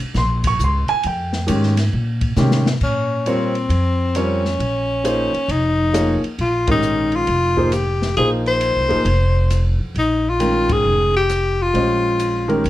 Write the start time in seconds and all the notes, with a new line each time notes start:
0.00 muted upright bass stroke
0.14 A#1 C6, snare
0.44 C#6, kick, ride
0.59 C#2, hi-hat pedal
0.64 C6
0.88 G#5, muted upright bass stroke, ride
1.03 F2 G5, ride
1.33 snare
1.47 G#2 D#3 G#3 C#4 G4, hi-hat pedal, ride
1.63 snare
1.77 snare, ride
1.93 A#2
2.21 kick, ride
2.36 C3 D#3 G#3 C#4 G4, snare, hi-hat pedal
2.51 snare
2.66 snare
2.81 A#2 C#4, kick, crash
3.26 G3 C4 F4 A#4 C#5, hi-hat pedal, ride
3.55 ride
3.69 F2, ride
4.15 G3 C4 C#4 F4 A#4 C#5, cross-stick, hi-hat pedal, ride
4.45 snare
4.59 A#1, ride
5.04 F3 A#3 D#4 G#4 C5, hi-hat pedal, ride
5.33 muted upright bass stroke, ride
5.48 F1 D#4, ride
5.93 F3 A#3 D#4 G#4 C#5, cross-stick, hi-hat pedal, ride
6.23 muted upright bass stroke, ride
6.39 A#1 F4, ride
6.67 D#3 G#3 C#4 D#4 G4 A#4, kick, ride
6.82 hi-hat pedal
7.12 F4, ride
7.27 F1, ride
7.57 F3 A#3 D#4 G#4 C5, kick
7.72 G4, cross-stick, hi-hat pedal, ride
8.02 snare
8.17 A#1 F3 A#3 D#4 G#4 C5, ride
8.46 C5, ride
8.61 hi-hat pedal, ride
8.76 C2
8.88 G#1 F3 A#3 D#4 G#4 C5, ride
9.05 F1, ride
9.50 cross-stick, hi-hat pedal, ride
9.79 F2
9.95 A#1 D#4, ride
10.29 F4
10.39 D#3 G#3 C#4 A#4 G5, hi-hat pedal, ride
10.69 G#4, kick, ride
10.84 F1
11.17 G4
11.30 cross-stick, hi-hat pedal, ride
11.62 F4
11.73 A#1 G#3 C#4 G4 C5 D#5, ride
12.19 hi-hat pedal, ride
12.48 D#3 G#3 C#4 G4 A#4, ride
12.64 F1, ride